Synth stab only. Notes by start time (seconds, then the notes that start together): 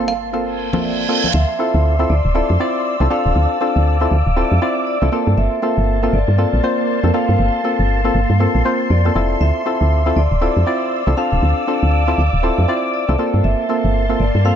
Already playing: A#3 C4 F4
0.00 A4
0.33 A#3 C4 F4 A4
0.73 A#3 C4 F4 A4
1.08 A#3 C4 F4 A4
1.59 C4 E4 F4 A4
1.99 C4 E4 F4 A4
2.34 C4 E4 F4 A4
2.60 C4 E4 F4 D5
3.00 C4 E4 F4 A4
3.10 C4 D4 F4 A4
3.61 C4 D4 F4 A4
4.01 C4 E4 F4 A4
4.36 C4 E4 F4 A4
4.61 C4 E4 F4 D5
5.02 C4 E4 F4 A4
5.12 A#3 C4 F4 A4
5.62 A#3 C4 F4 A4
6.03 A#3 C4 F4 A4
6.38 A#3 C4 F4 A4
6.63 A#3 C4 F4 C5
7.03 A#3 C4 F4 A4
7.14 A#3 C4 F4 A4
7.64 A#3 C4 F4 A4
8.04 A#3 C4 F4 A4
8.40 A#3 C4 F4 A4
8.65 A#3 C4 F4 C5
9.05 A#3 C4 F4 A4
9.15 C4 E4 F4 A4
9.66 C4 E4 F4 A4
10.06 C4 E4 F4 A4
10.41 C4 E4 F4 A4
10.66 C4 E4 F4 D5
11.07 C4 E4 F4 A4
11.17 C4 D4 F4 A4
11.67 C4 D4 F4 A4
12.08 C4 E4 F4 A4
12.43 C4 E4 F4 A4
12.68 C4 E4 F4 D5
13.08 C4 E4 F4 A4
13.18 A#3 C4 F4 A4
13.69 A#3 C4 F4 A4
14.09 A#3 C4 F4 A4
14.45 A#3 C4 F4 A4